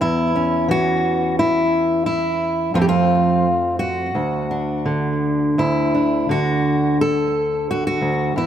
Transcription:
0.00 2.71 E2 medium
0.00 0.35 B3 soft
0.00 0.69 E4 medium
0.36 2.72 C#4 soft
0.68 2.71 E3 medium
0.68 1.38 F#4 loud
1.39 2.05 E4 medium
2.06 2.75 E4 medium
2.74 4.11 F2 medium
2.74 3.45 F3 soft
2.74 4.12 A3 soft
2.74 4.12 C4 soft
2.74 2.81 F4 medium
2.82 2.88 G4 medium
2.89 3.79 F4 medium
3.79 5.59 F#4 medium
4.15 5.57 D2 medium
4.51 5.55 D4 soft
4.86 6.28 D3 medium
5.58 8.00 D2 medium
5.58 6.30 E4 medium
5.95 8.32 D4 soft
6.29 8.36 D3 medium
6.29 7.00 F#4 medium
7.01 7.70 A4 medium
7.71 7.86 F#4 medium
7.87 8.37 F#4 medium
8.01 8.36 D2 medium
8.36 8.46 E2 medium
8.36 8.46 E4 medium

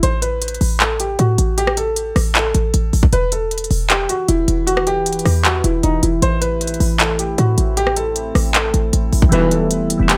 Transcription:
0.03 0.59 A1 loud
0.03 0.19 C5 medium
0.03 closed hi-hat medium
0.22 0.77 B4 medium
0.22 closed hi-hat medium
0.42 closed hi-hat medium
0.48 closed hi-hat medium
0.54 closed hi-hat soft
0.61 1.17 A1 loud
0.61 open hi-hat medium
0.80 0.96 A4 medium
0.80 clap loud
0.80 closed hi-hat medium
1.00 1.16 G4 medium
1.00 closed hi-hat medium
1.19 1.38 A2 loud
1.19 1.56 F#4 medium
1.19 closed hi-hat medium
1.38 2.13 A1 loud
1.38 closed hi-hat medium
1.58 1.74 G4 loud
1.58 closed hi-hat medium
1.67 cross-stick loud
1.77 2.32 A4 medium
1.77 closed hi-hat medium
1.96 closed hi-hat medium
2.16 2.53 A1 loud
2.16 cross-stick medium
2.16 open hi-hat medium
2.35 3.09 A4 medium
2.35 clap loud
2.35 closed hi-hat medium
2.54 2.73 A1 loud
2.54 closed hi-hat medium
2.74 2.92 A1 loud
2.74 closed hi-hat medium
2.93 3.12 A1 loud
2.93 open hi-hat medium
3.03 kick loud
3.13 3.68 E1 loud
3.13 6.19 E3 medium
3.13 9.28 E4 medium
3.13 6.19 G4 medium
3.13 6.19 B4 medium
3.13 3.29 B4 loud
3.13 closed hi-hat medium
3.32 3.87 A4 medium
3.32 closed hi-hat medium
3.51 closed hi-hat medium
3.58 closed hi-hat medium
3.64 closed hi-hat soft
3.71 4.08 E1 loud
3.71 open hi-hat medium
3.90 4.06 G4 medium
3.90 clap loud
3.90 closed hi-hat medium
4.09 4.26 F#4 medium
4.09 closed hi-hat medium
4.28 4.47 E1 loud
4.28 4.65 E4 medium
4.28 closed hi-hat medium
4.48 5.22 E1 loud
4.48 closed hi-hat medium
4.67 4.83 F#4 loud
4.67 closed hi-hat medium
4.77 cross-stick loud
4.87 5.41 G4 medium
4.87 closed hi-hat medium
5.06 closed hi-hat medium
5.13 closed hi-hat medium
5.19 closed hi-hat soft
5.25 5.63 E2 loud
5.25 cross-stick medium
5.25 open hi-hat medium
5.45 5.61 F#4 medium
5.45 clap loud
5.45 closed hi-hat medium
5.64 5.83 E1 loud
5.64 5.80 E4 medium
5.64 closed hi-hat medium
5.83 6.02 E1 loud
5.83 6.00 D#4 medium
5.83 closed hi-hat medium
6.03 6.21 E1 loud
6.03 6.19 E4 medium
6.03 closed hi-hat medium
6.22 6.78 A1 loud
6.22 9.29 A3 medium
6.22 9.29 C4 medium
6.22 6.38 C5 loud
6.22 closed hi-hat medium
6.41 6.96 B4 medium
6.41 closed hi-hat medium
6.61 closed hi-hat medium
6.67 closed hi-hat medium
6.74 closed hi-hat soft
6.80 7.36 A1 loud
6.80 open hi-hat medium
6.99 7.16 A4 medium
6.99 clap loud
6.99 closed hi-hat medium
7.19 7.35 G4 medium
7.19 closed hi-hat medium
7.38 7.57 A2 loud
7.38 7.75 F#4 medium
7.38 closed hi-hat medium
7.58 8.32 A1 loud
7.58 closed hi-hat medium
7.77 7.93 G4 loud
7.77 closed hi-hat medium
7.87 cross-stick medium
7.96 8.51 A4 medium
7.96 closed hi-hat medium
8.16 closed hi-hat medium
8.35 8.72 A1 loud
8.35 cross-stick medium
8.35 open hi-hat medium
8.55 9.28 A4 medium
8.55 clap loud
8.55 closed hi-hat medium
8.74 8.92 A1 loud
8.74 closed hi-hat medium
8.93 9.12 A1 loud
8.93 closed hi-hat medium
9.13 9.31 A1 loud
9.13 open hi-hat medium
9.22 kick loud
9.29 9.97 E1 loud
9.29 9.69 B1 loud
9.29 9.69 G2 loud
9.29 9.80 E3 loud
9.29 9.69 E3 loud
9.29 10.17 E3 medium
9.29 9.81 G3 medium
9.29 9.82 B3 medium
9.29 10.17 E4 medium
9.29 10.17 G4 medium
9.29 10.17 B4 medium
9.29 9.48 B4 loud
9.29 closed hi-hat medium
9.34 9.83 E4 loud
9.51 10.06 A4 medium
9.51 closed hi-hat medium
9.71 closed hi-hat medium
9.90 closed hi-hat medium
9.98 10.17 E1 loud
9.98 10.17 E3 medium
9.98 10.17 G3 medium
9.98 10.17 B3 medium
10.03 10.17 E4 medium
10.09 10.17 G4 medium
10.09 clap loud
10.09 closed hi-hat medium

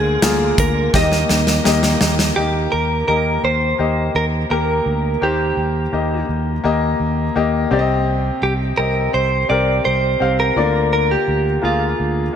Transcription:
0.00 0.16 D2 medium
0.00 0.18 D3 medium
0.00 0.92 D3 medium
0.00 0.22 A#3 medium
0.00 0.92 A#3 soft
0.00 0.23 F4 medium
0.00 0.92 F4 medium
0.00 0.59 G#4 medium
0.00 0.96 D5 medium
0.22 0.52 D2 medium
0.22 0.81 A#3 medium
0.22 0.81 F4 medium
0.22 0.81 G#4 medium
0.22 snare loud
0.22 closed hi-hat medium
0.58 0.87 D2 medium
0.58 0.96 A#4 medium
0.58 kick medium
0.58 closed hi-hat medium
0.93 1.23 D#2 medium
0.93 1.97 D#3 medium
0.93 2.35 D#3 medium
0.93 1.52 A#3 medium
0.93 2.35 A#3 soft
0.93 1.52 G4 medium
0.93 2.35 G4 medium
0.93 1.53 D#5 medium
0.93 1.98 D#5 medium
0.93 kick medium
0.93 snare medium
1.12 snare soft
1.29 1.59 D#2 loud
1.29 snare medium
1.47 snare medium
1.64 1.95 D#2 medium
1.64 2.23 A#3 medium
1.64 2.24 G4 medium
1.64 2.24 D#5 medium
1.64 snare medium
1.83 snare medium
2.01 2.30 D#2 loud
2.01 snare medium
2.19 snare medium
2.36 2.66 D#2 medium
2.36 3.40 D#3 soft
2.36 2.95 A#3 medium
2.36 2.73 G4 medium
2.36 2.95 G4 medium
2.36 2.95 D#5 medium
2.72 3.02 D#2 medium
2.72 3.05 A#4 medium
3.07 3.37 D#2 medium
3.07 3.66 A#3 medium
3.07 3.66 G4 soft
3.07 3.44 A#4 medium
3.07 3.67 D#5 medium
3.44 3.73 D#2 medium
3.44 4.11 C5 medium
3.78 4.08 D#2 medium
3.78 4.37 A#3 medium
3.78 4.37 G4 medium
3.78 4.38 D#5 medium
4.15 4.44 D#2 medium
4.15 4.25 A#4 medium
4.50 4.80 D#2 medium
4.50 5.08 A#3 medium
4.50 5.09 G4 medium
4.50 5.24 A#4 medium
4.50 5.09 A#4 medium
4.86 5.15 D2 medium
5.21 5.51 D#2 medium
5.21 6.25 D#3 soft
5.21 5.80 A#3 medium
5.21 5.80 G4 medium
5.21 6.25 G4 medium
5.21 5.80 C5 medium
5.57 5.86 D#2 medium
5.93 6.22 D#2 medium
5.93 6.51 A#3 soft
5.93 6.51 G4 soft
5.93 6.52 D#5 medium
6.29 6.58 D#2 medium
6.64 6.93 D#2 medium
6.64 7.22 A#3 medium
6.64 7.23 G4 medium
6.64 7.23 D#5 medium
7.00 7.29 D#2 medium
7.36 7.65 D#2 medium
7.36 7.71 A#3 medium
7.36 7.70 G4 medium
7.36 7.72 D#5 medium
7.71 8.30 C2 loud
7.71 8.74 C3 medium
7.71 8.59 C4 medium
7.71 8.59 G4 medium
7.71 7.78 D5 medium
7.79 8.63 D#5 medium
8.42 8.71 C2 medium
8.42 8.53 G4 medium
8.77 9.07 C2 medium
8.77 9.36 C4 medium
8.77 9.37 G4 medium
8.77 9.14 A#4 medium
8.77 9.37 D#5 medium
9.14 9.43 C2 medium
9.14 9.49 C5 medium
9.49 9.79 C2 medium
9.49 10.08 C4 medium
9.49 10.08 G4 medium
9.49 10.09 A#4 medium
9.49 9.85 D5 medium
9.85 10.15 C2 medium
9.85 10.39 C5 loud
10.20 10.50 C2 medium
10.20 10.56 C4 medium
10.20 10.57 G4 medium
10.20 10.57 F5 medium
10.40 10.92 A#4 medium
10.56 11.15 D2 medium
10.56 11.60 D3 medium
10.56 11.44 A#3 medium
10.56 11.44 F4 medium
10.56 11.45 D5 medium
10.93 11.11 A#4 medium
11.11 11.64 G4 medium
11.28 11.57 D2 medium
11.62 11.93 D2 medium
11.62 12.21 A#3 medium
11.62 12.21 F4 soft
11.62 12.36 F4 medium
11.62 12.22 G#4 medium
12.00 12.29 D2 medium

